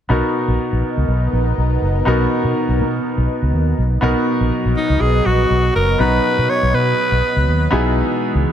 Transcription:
0.09 fingered electric bass B1, grand piano B2 B3 D#4 F#4 A#4, analog synth pad B3 D#4 A#4
0.48 fingered electric bass A#1
0.72 fingered electric bass A#1
0.97 fingered electric bass C#2
1.08 fingered electric bass B1
1.33 fingered electric bass A#1
1.58 fingered electric bass B1
1.82 fingered electric bass F#1
2.05 fingered electric bass B1, grand piano B2 B3 D#4 F#4 A#4
2.44 fingered electric bass B2
2.69 fingered electric bass B1
2.79 fingered electric bass B2
3.17 fingered electric bass B1
3.42 fingered electric bass C#2
3.53 fingered electric bass D#2
3.78 fingered electric bass B1
4.01 fingered electric bass B1, grand piano B2 B3 D#4 F#4 A#4, analog synth pad F#3 B3 D#5
4.40 fingered electric bass A#1
4.65 fingered electric bass A#1
4.77 alto saxophone D#4
4.89 fingered electric bass C#2
5.00 fingered electric bass B1, alto saxophone G#4
5.26 fingered electric bass A#1, alto saxophone F#4
5.50 fingered electric bass B1
5.75 fingered electric bass F#1, alto saxophone A#4
5.98 fingered electric bass B1, grand piano B2 B3 D#4 F#4 A#5, alto saxophone B4
6.38 fingered electric bass B2
6.50 alto saxophone C#5
6.63 fingered electric bass B1
6.73 fingered electric bass B2, alto saxophone B4
7.12 fingered electric bass B1
7.36 fingered electric bass C#2
7.48 fingered electric bass D#2
7.71 fingered electric bass B1, grand piano B2 B3 D#4 E4 G#4, analog synth pad E3 G#3
8.35 fingered electric bass C#2

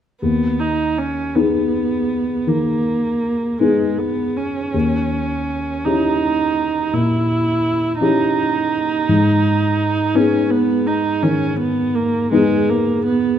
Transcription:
0.22 grand piano D#2, viola B3
0.60 viola D#4
0.98 viola C#4
1.36 viola B3, grand piano B3 D#4 G#4
2.47 grand piano D#3, viola A#3
3.60 viola G#3, grand piano B3 D#4 G#4
3.98 viola B3
4.37 viola C#4
4.74 grand piano D#2
5.84 grand piano C#4 E4 G4, viola D#4
6.93 grand piano A#2, viola E4
8.01 grand piano C#4 E4 G4, viola D#4
9.09 grand piano G#2
10.15 grand piano B3 D#4 G#4, viola C#4
10.50 viola B3
10.87 viola D#4
11.23 grand piano D#3, viola C#4
11.59 viola B3
11.95 viola A#3
12.32 viola G#3, grand piano B3 D#4 G#4
12.69 viola A#3
13.04 viola B3

